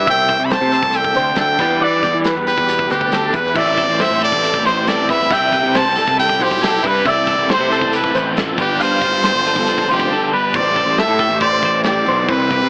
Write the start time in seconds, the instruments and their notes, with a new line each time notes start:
Already playing: clean electric guitar E3 G3 E4 G4 C5
0.06 picked electric bass C2, clean electric guitar C3 E5, trumpet G5, kick, closed hi-hat
0.28 clean electric guitar C5, kick, closed hi-hat
0.39 picked electric bass C2
0.45 trumpet B5
0.50 clean electric guitar A3 G4 C5, trumpet A5, snare, closed hi-hat
0.61 picked electric bass C3
0.72 clean electric guitar A4 C5, closed hi-hat
0.83 picked electric bass C2, kick
0.93 clean electric guitar G4, trumpet G5, closed hi-hat
1.04 kick
1.15 picked electric bass D2, clean electric guitar C3 C5, closed hi-hat
1.35 clean electric guitar D3 A4, snare, closed hi-hat
1.40 trumpet G5
1.59 picked electric bass E2, clean electric guitar E3 G3 D4 G4 B4, kick, snare, crash
1.63 clean electric guitar B4
1.81 picked electric bass E3, clean electric guitar B4 D5, trumpet D5
2.03 picked electric bass E2, clean electric guitar G3 G4, kick, closed hi-hat
2.14 picked electric bass E3
2.24 clean electric guitar B4, snare, closed hi-hat
2.36 picked electric bass E2
2.47 clean electric guitar G4, trumpet B4, closed hi-hat
2.58 picked electric bass E2, kick
2.68 clean electric guitar B2 G4, closed hi-hat
2.79 kick
2.90 picked electric bass D2, clean electric guitar C4 B4, trumpet G4, snare, closed hi-hat
3.01 clean electric guitar D4, kick
3.12 clean electric guitar C4 A4, snare, closed hi-hat
3.23 clean electric guitar D4
3.33 picked electric bass E2, clean electric guitar E3 B4, trumpet B4, kick, closed hi-hat
3.46 snare
3.54 picked electric bass A1, overdriven electric guitar A2 E3 A3 C4 E4, clean electric guitar A2 E5, trumpet D5, kick, crash
3.75 overdriven electric guitar A3 C4 E4, clean electric guitar A4, kick, closed hi-hat
3.88 picked electric bass A1, clean electric guitar C5
3.98 overdriven electric guitar E3 A3 C4 E4, clean electric guitar A3 E4 C5, trumpet E5, snare, closed hi-hat
4.10 picked electric bass A2, clean electric guitar G4
4.19 overdriven electric guitar A2 E3 A3 C4 E4, clean electric guitar A4, closed hi-hat
4.24 trumpet D5
4.32 picked electric bass A1, clean electric guitar C5, kick
4.42 overdriven electric guitar E3 A3 C4 E4, clean electric guitar E4, closed hi-hat
4.54 clean electric guitar G4, kick
4.64 picked electric bass A1, clean electric guitar E3 G4 C5, overdriven electric guitar A3 C4 E4, trumpet C5, closed hi-hat
4.85 overdriven electric guitar A2 E3 A3 C4 E4, clean electric guitar C4 A4, trumpet D5, snare, closed hi-hat
5.07 picked electric bass E2, overdriven electric guitar A3 C4 E4, clean electric guitar G4 B4, trumpet E5, kick, closed hi-hat
5.22 snare
5.29 picked electric bass C2, overdriven electric guitar C3 G3 C4 E4, clean electric guitar C3 G3 E4 G4 E5, trumpet G5, kick, closed hi-hat
5.34 clean electric guitar B4
5.52 picked electric bass C2, overdriven electric guitar G3 C4 E4, clean electric guitar B4, kick, closed hi-hat
5.63 picked electric bass C3
5.73 overdriven electric guitar C3 G3 C4 E4, clean electric guitar G3 E4 C5, trumpet A5, snare, closed hi-hat
5.85 picked electric bass C2, clean electric guitar G4
5.96 overdriven electric guitar C3 G3 C4 E4, clean electric guitar A4, snare, closed hi-hat
6.07 picked electric bass C2, clean electric guitar B4, kick
6.17 overdriven electric guitar C3 G3 C4 E4, clean electric guitar E4, trumpet G5, closed hi-hat
6.28 clean electric guitar G4, kick
6.39 picked electric bass B1, overdriven electric guitar G3 C4 E4, clean electric guitar E4 C5, trumpet G4, closed hi-hat
6.51 kick
6.61 overdriven electric guitar C3 G3 C4 E4, clean electric guitar E4 A4, snare, closed hi-hat
6.83 picked electric bass G2, overdriven electric guitar G3 C4 E4, clean electric guitar E4 B4, trumpet B4, kick, closed hi-hat
6.95 clean electric guitar G4
7.04 picked electric bass C2, overdriven electric guitar C3 E3 A3 E4, clean electric guitar C3 E5, kick, closed hi-hat
7.08 trumpet D5
7.26 overdriven electric guitar E3 A3 E4, clean electric guitar A4, kick, closed hi-hat
7.38 picked electric bass C2
7.47 overdriven electric guitar C3 E3 A3 E4, clean electric guitar A3 G4 C5, snare, closed hi-hat
7.52 trumpet C5
7.60 picked electric bass C3
7.69 overdriven electric guitar C3 E3 A3 E4, clean electric guitar A4, closed hi-hat
7.81 picked electric bass C2, kick
7.91 overdriven electric guitar C3 E3 A3 E4, clean electric guitar G4, closed hi-hat
7.95 trumpet B4
8.04 kick, snare
8.12 picked electric bass A1, clean electric guitar E3 C5, overdriven electric guitar E3 A3 E4, closed hi-hat
8.33 overdriven electric guitar C3 E3 A3 E4, clean electric guitar F3 A4, closed hi-hat
8.38 snare
8.56 picked electric bass G1, overdriven electric guitar G2 D3 F3 B3 D4, clean electric guitar G3 B4, kick, closed hi-hat
8.61 clean electric guitar F4, trumpet G4
8.78 overdriven electric guitar G2 D3 F3 B3 D4, picked electric bass G2, clean electric guitar F4 F5, closed hi-hat
8.82 trumpet C5
8.99 picked electric bass G1, overdriven electric guitar F3 B3 D4, clean electric guitar F4, kick, closed hi-hat
9.13 picked electric bass G2
9.21 overdriven electric guitar D3 F3 B3 D4, clean electric guitar C5, snare, closed hi-hat
9.25 clean electric guitar F4
9.34 picked electric bass G1
9.43 overdriven electric guitar G2 D3 F3 B3 D4, clean electric guitar A4, closed hi-hat
9.47 clean electric guitar F4
9.56 picked electric bass G1, kick
9.65 overdriven electric guitar D3 F3 B3 D4, clean electric guitar D3, closed hi-hat
9.69 clean electric guitar F4
9.78 kick
9.87 picked electric bass F1, overdriven electric guitar F3 B3 D4, clean electric guitar C5, closed hi-hat
9.91 clean electric guitar F4, trumpet G4
10.00 kick
10.08 overdriven electric guitar G2 D3 F3 B3 D4, clean electric guitar A4
10.13 clean electric guitar A4
10.22 clean electric guitar C5
10.30 overdriven electric guitar F3 B3 D4, clean electric guitar G3 B4, trumpet B4
10.54 picked electric bass A1, clean electric guitar A2 C5, trumpet D5, kick, crash
10.76 clean electric guitar A4, kick, crash
10.86 picked electric bass A1, clean electric guitar C5
10.97 clean electric guitar A3 G4 A4, trumpet E5, snare, crash
11.08 picked electric bass A2, snare
11.19 clean electric guitar G4 A4, kick, crash
11.30 picked electric bass A1, clean electric guitar C5
11.40 clean electric guitar G4 C5, trumpet D5, kick, crash
11.62 picked electric bass A1, clean electric guitar E3 C5, kick, crash
11.84 clean electric guitar A2 G4, trumpet D5, snare, crash
12.06 picked electric bass B1, clean electric guitar B2 C5, crash
12.28 picked electric bass C2, clean electric guitar C3 C4, trumpet B4, kick, crash
12.50 picked electric bass C2, clean electric guitar G4, kick, crash
12.62 picked electric bass C3